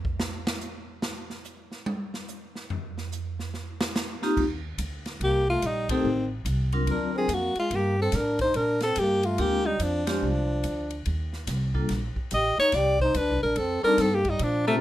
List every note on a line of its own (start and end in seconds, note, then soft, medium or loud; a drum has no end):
0.05 kick medium
0.20 snare loud
0.47 snare loud
0.61 hi-hat pedal medium
1.02 snare medium
1.30 snare soft
1.44 hi-hat pedal medium
1.72 snare soft
1.86 high tom loud
2.14 snare soft
2.28 hi-hat pedal medium
2.55 snare soft
2.70 floor tom loud
2.98 snare soft
3.12 hi-hat pedal medium
3.39 snare soft
3.54 snare soft
3.81 snare loud
3.95 snare loud
3.95 hi-hat pedal medium
4.22 4.36 A#3 medium
4.22 4.36 C4 medium
4.22 4.36 D#4 medium
4.22 4.36 F4 medium
4.22 4.36 G4 medium
4.22 snare soft
4.37 4.78 D#2 medium
4.37 kick medium
4.37 crash medium
4.78 5.19 D2 medium
4.78 hi-hat pedal medium
4.78 ride medium
5.06 snare soft
5.06 ride soft
5.20 5.61 C2 medium
5.20 5.47 A#3 medium
5.20 5.47 G4 medium
5.20 ride medium
5.49 5.67 A3 medium
5.49 5.68 F4 medium
5.62 6.03 A#1 medium
5.62 5.90 G3 medium
5.62 hi-hat pedal soft
5.62 ride medium
5.67 5.90 D#4 medium
5.89 6.29 D#3 medium
5.89 6.03 A3 medium
5.89 6.03 C4 medium
5.89 6.29 C4 medium
5.89 6.03 D#4 medium
5.89 6.03 G4 medium
5.89 6.03 A4 medium
5.89 kick medium
5.89 ride medium
6.04 6.44 A1 medium
6.45 6.86 C2 medium
6.45 hi-hat pedal soft
6.45 ride medium
6.72 7.27 F#3 medium
6.72 7.27 C4 medium
6.72 7.27 D4 medium
6.72 7.27 F4 medium
6.72 7.27 A#4 medium
6.72 ride soft
6.86 7.27 D2 medium
6.86 7.14 D4 medium
6.86 ride medium
6.91 7.15 A#4 medium
7.15 7.32 C4 medium
7.15 7.36 G#4 medium
7.28 7.54 F2 medium
7.28 7.57 A#3 medium
7.28 hi-hat pedal medium
7.28 ride medium
7.34 7.59 F#4 medium
7.55 7.74 G#3 medium
7.55 7.77 F4 medium
7.55 muted upright bass stroke soft
7.55 ride soft
7.71 8.12 G2 medium
7.71 7.99 A#3 medium
7.71 ride medium
7.75 8.00 G4 medium
8.00 8.18 C4 medium
8.00 8.18 A4 medium
8.12 8.54 A2 medium
8.12 snare soft
8.12 hi-hat pedal soft
8.12 ride medium
8.16 8.41 D4 medium
8.16 8.41 A#4 medium
8.39 8.58 D#4 medium
8.39 8.57 C5 medium
8.39 kick medium
8.39 ride soft
8.54 8.95 A#2 medium
8.54 8.82 D4 medium
8.54 8.82 A#4 medium
8.54 ride medium
8.80 9.00 C4 medium
8.80 9.01 A4 medium
8.80 snare medium
8.80 ride soft
8.96 9.37 G2 medium
8.96 9.26 A#3 medium
8.96 9.27 G4 medium
8.96 hi-hat pedal medium
8.96 ride medium
9.23 9.41 A3 medium
9.23 9.42 F4 medium
9.23 ride soft
9.38 9.79 D2 medium
9.38 9.63 G#3 medium
9.38 9.67 A#3 medium
9.38 9.63 C4 soft
9.38 9.63 D4 medium
9.38 9.63 F4 soft
9.38 9.63 G4 medium
9.38 9.68 G4 medium
9.38 ride medium
9.65 9.83 G3 medium
9.65 9.84 D#4 medium
9.79 10.20 F2 medium
9.79 10.06 F3 medium
9.79 10.08 D4 medium
9.79 hi-hat pedal medium
9.79 ride medium
10.07 11.01 F3 medium
10.07 10.20 G#3 medium
10.07 10.20 C4 medium
10.07 10.21 D4 medium
10.07 11.03 D4 medium
10.07 10.21 F4 medium
10.07 10.20 G4 medium
10.07 snare medium
10.07 ride medium
10.22 10.63 C2 medium
10.64 11.04 D2 medium
10.64 hi-hat pedal medium
10.64 ride medium
10.90 ride soft
11.05 11.46 D#2 medium
11.05 ride medium
11.33 snare soft
11.47 11.88 C2 medium
11.47 snare soft
11.47 hi-hat pedal medium
11.47 ride medium
11.74 11.88 G3 medium
11.74 11.88 A#3 soft
11.74 11.88 D4 medium
11.74 11.88 F4 soft
11.74 11.88 A4 medium
11.74 kick medium
11.89 12.15 A#1 medium
11.89 snare soft
11.89 ride medium
12.16 muted upright bass stroke soft
12.16 kick medium
12.31 12.56 A1 medium
12.31 12.57 G4 medium
12.31 12.58 D#5 medium
12.31 hi-hat pedal medium
12.31 ride medium
12.58 12.77 D#4 medium
12.58 12.76 C#5 loud
12.58 muted upright bass stroke soft
12.58 snare soft
12.72 13.13 C2 medium
12.72 13.00 G4 medium
12.72 13.00 D5 medium
12.72 snare soft
12.72 ride medium
13.00 13.19 D#4 medium
13.00 13.18 C5 medium
13.00 kick soft
13.14 13.29 D2 medium
13.14 13.42 D4 medium
13.14 13.42 B4 medium
13.14 hi-hat pedal medium
13.14 ride medium
13.29 13.43 C2 medium
13.43 13.55 A#1 medium
13.43 13.60 D4 medium
13.43 13.59 A#4 medium
13.56 13.81 F2 medium
13.56 13.83 C4 medium
13.56 13.84 A4 medium
13.56 ride medium
13.83 13.97 G3 medium
13.83 13.97 C4 medium
13.83 13.97 D4 medium
13.83 14.01 D4 medium
13.83 13.97 D#4 medium
13.83 13.97 A4 medium
13.83 14.03 A#4 loud
13.83 muted upright bass stroke soft
13.98 14.38 G2 medium
13.98 14.15 C4 medium
13.98 14.16 A4 medium
13.98 snare soft
13.98 hi-hat pedal medium
13.98 ride medium
14.14 14.29 A#3 medium
14.14 14.31 G4 medium
14.25 14.44 G3 medium
14.25 kick soft
14.25 ride soft
14.30 14.45 D#4 medium
14.39 14.80 A#2 medium
14.39 14.67 F3 medium
14.39 14.67 D4 medium
14.39 ride medium
14.67 14.81 C3 medium
14.67 14.76 A3 medium
14.67 14.80 A#3 medium
14.67 14.80 C4 medium
14.67 14.81 D4 medium
14.67 14.81 F4 medium
14.67 14.81 A4 medium